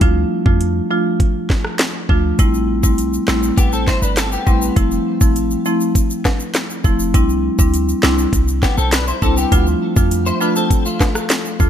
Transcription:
0.01 D2 F3 A3 D4 F4, kick, closed hi-hat
0.46 F2 F3 A3 D4 F4, kick
0.61 closed hi-hat
0.90 F3 A3 D4 F4
1.20 kick, closed hi-hat
1.50 kick, snare
1.65 cross-stick
1.79 snare, closed hi-hat
2.09 D2 F3 A3 D4 F4, kick
2.39 A1 G3 A3 C4 E4, kick, closed hi-hat, shaker
2.54 shaker
2.83 B1 G3 A3 C4 E4, kick, shaker
2.98 closed hi-hat, shaker
3.13 shaker
3.28 A1 G3 A3 C4 E4, snare, shaker
3.43 shaker
3.58 A1 B3 G4, kick, closed hi-hat, shaker
3.73 C4 A4, shaker
3.87 E4 C5, kick, snare, shaker
4.02 G1 D4 B4, shaker
4.17 C4 A4, snare, closed hi-hat, shaker
4.32 B3 G4, shaker
4.47 A1 G3 A3 C4 E4, kick, shaker
4.62 shaker
4.76 F1 F3 A3 C4 E4, kick, closed hi-hat, shaker
4.91 shaker
5.21 A1 F3 A3 C4 E4, kick, shaker
5.36 closed hi-hat, shaker
5.51 shaker
5.66 F3 A3 C4 E4, shaker
5.81 shaker
5.95 kick, closed hi-hat, shaker
6.10 shaker
6.25 kick, snare, high timbale, shaker
6.40 shaker
6.54 snare, closed hi-hat, shaker
6.70 shaker
6.84 F1 F3 A3 C4 E4, kick, shaker
7.00 shaker
7.14 C2 G3 C4 D4 E4, kick, closed hi-hat, shaker
7.29 shaker
7.59 D2 G3 C4 D4 E4, kick, shaker
7.74 closed hi-hat, shaker
7.89 shaker
8.03 C2 G3 C4 D4 E4, snare, shaker
8.18 shaker
8.33 C2, kick, closed hi-hat, shaker
8.48 shaker
8.63 B3 G4, kick, snare, shaker
8.78 B1 C4 A4, shaker
8.92 D4 B4, snare, closed hi-hat, shaker
9.08 E4 C5, shaker
9.22 C2 G3 C4 D4 E4 A4, kick, shaker
9.37 B3 G4, shaker
9.52 D2 F3 A3 D4 F4, kick, closed hi-hat, shaker
9.67 shaker
9.96 F2 F3 A3 D4 F4, kick, shaker
10.11 closed hi-hat, shaker
10.26 E4 C5, shaker
10.41 F3 A3 D4 F4 B4, shaker
10.56 C4 A4, shaker
10.71 kick, closed hi-hat, shaker
10.86 A3 F4, shaker
11.00 kick, snare, high timbale, shaker
11.15 cross-stick, shaker
11.30 snare, closed hi-hat, shaker
11.45 shaker
11.60 D2 F3 A3 D4 F4, kick, shaker

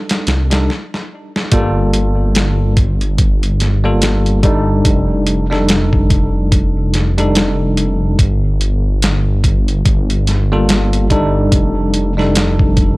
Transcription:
Already playing: G3 D4 D#4 A4
0.09 snare, closed hi-hat
0.27 C2, snare, closed hi-hat
0.51 G3 D4 D#4 A4, snare, closed hi-hat
0.70 snare
0.94 snare
1.36 snare
1.52 G1 G3 A#3 F4 A4, kick, closed hi-hat
1.93 closed hi-hat
2.35 snare, closed hi-hat
2.77 kick, closed hi-hat
3.01 closed hi-hat
3.18 kick, closed hi-hat
3.43 closed hi-hat
3.60 snare, closed hi-hat
3.84 G3 A#3 F4 A4
4.02 snare, closed hi-hat
4.26 closed hi-hat
4.43 G3 D4 D#4 A4, kick, closed hi-hat
4.85 F1, kick, closed hi-hat
5.27 closed hi-hat
5.50 G3 D4 D#4 A4, snare
5.69 snare, closed hi-hat
5.93 kick
6.10 kick, closed hi-hat
6.52 kick, closed hi-hat
6.94 snare, closed hi-hat
7.18 G3 D4 D#4 A4, closed hi-hat
7.35 snare, closed hi-hat
7.77 closed hi-hat
8.19 G1, kick, closed hi-hat
8.61 closed hi-hat
9.02 snare, closed hi-hat
9.44 kick, closed hi-hat
9.68 closed hi-hat
9.85 G1, kick, closed hi-hat
10.10 closed hi-hat
10.27 snare, closed hi-hat
10.52 G3 A#3 F4 A4
10.69 snare, closed hi-hat
10.93 closed hi-hat
11.10 G3 D4 D#4 A4, kick, closed hi-hat
11.52 F1, kick, closed hi-hat
11.94 closed hi-hat
12.17 G3 D4 D#4 A4, snare
12.35 snare, closed hi-hat
12.59 kick
12.77 kick, closed hi-hat

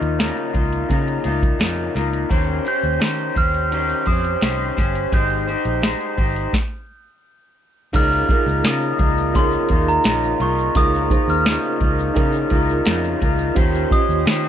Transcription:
Already playing: A#3 D#4 F4 F6
0.01 D#2, closed hi-hat
0.19 C#3 A#3 D#4 F4, snare, closed hi-hat
0.37 closed hi-hat
0.53 C#2 A#3 D#4 F4, kick, closed hi-hat
0.72 closed hi-hat
0.89 C#3 A#3 D#4 F4, kick, closed hi-hat
1.08 closed hi-hat
1.24 C#2 A#3 D#4 F4, closed hi-hat
1.43 kick, closed hi-hat
1.59 F2 C#3 A#3 D#4 F4, snare, closed hi-hat
1.94 C#2 A#3 D#4 F4, snare, closed hi-hat
2.13 closed hi-hat
2.30 D#2 D#3 C#4 G4 C5, kick, closed hi-hat
2.65 C#4 G4 C5 G6, closed hi-hat
2.83 D#2, closed hi-hat
3.00 D#3 C#4 G4 C5, snare, closed hi-hat
3.19 closed hi-hat
3.35 D#2 C#4 G4 C5 F6, kick, closed hi-hat
3.54 closed hi-hat
3.71 D#3 C#4 G4 C5, closed hi-hat
3.90 closed hi-hat
4.06 F2 C#4 G4 C5 D#6, kick, closed hi-hat
4.24 closed hi-hat
4.41 C2 D#3 C#4 G4 C5, snare, closed hi-hat
4.77 G1 C#4 G4 C5, kick, snare, closed hi-hat
4.95 closed hi-hat
5.12 G#1 G#3 D#4 G4 C5 G6, kick, closed hi-hat
5.30 closed hi-hat
5.47 D#4 G4 C5, closed hi-hat
5.65 A#1, closed hi-hat
5.82 G#3 D#4 G4 C5, snare, closed hi-hat
6.01 closed hi-hat
6.17 G#1 D#4 G4 C5, kick, closed hi-hat
6.36 closed hi-hat
6.53 kick, snare
7.93 C#2 C#3 A#3 D#4 F4 G#4 A#4 F6, kick, closed hi-hat, crash, shaker
8.12 shaker
8.29 A#3 D#4 F4 G#4 A#4, kick, closed hi-hat, shaker
8.46 C#2, shaker
8.64 C#3 A#3 D#4 F4 D#6, snare, closed hi-hat, shaker
8.81 shaker
8.98 C#2 A#3 D#4 F4, kick, closed hi-hat
9.18 shaker
9.33 C#3 A#3 D#4 F4 G#4 A#4 C6, kick, closed hi-hat, shaker
9.52 shaker
9.69 D#2 A#3 D#4 F4, kick, closed hi-hat
9.88 A#5, shaker
10.04 A#1 C#3 A#3 D#4 F4, snare, closed hi-hat, shaker
10.24 shaker
10.40 C2 A#3 D#4 F4 C#6, closed hi-hat
10.58 shaker
10.75 C#2 C#3 A#3 D#4 F4 G#4 A#4 D#6, kick, closed hi-hat, shaker
10.94 shaker
11.09 A#3 D#4 F4 G#4 C5, kick, closed hi-hat, shaker
11.28 D#2 F6, shaker
11.45 C#3 A#3 D#4 F4, snare, closed hi-hat, shaker
11.63 shaker
11.80 C#2 A#3 D#4 F4, kick, closed hi-hat
11.99 shaker
12.14 C#3 A#3 D#4 E4 F4 G#4 A#4, kick, closed hi-hat, shaker
12.33 shaker
12.50 C#2 A#3 D#4 F4, kick, closed hi-hat
12.69 shaker
12.85 F2 C#3 A#3 D#4 F4, snare, closed hi-hat, shaker
13.04 shaker
13.20 C#2 A#3 D#4 F4, kick, closed hi-hat
13.38 shaker
13.55 D#2 D#3 C#4 F4 G4 C5, kick, closed hi-hat, shaker
13.74 shaker
13.90 C#4 F4 G4 C5 D#5 D#6, kick, closed hi-hat, shaker
13.94 C#4
14.09 D#2, shaker
14.26 D#3 C#4 G4 C5, snare, closed hi-hat, shaker
14.44 shaker

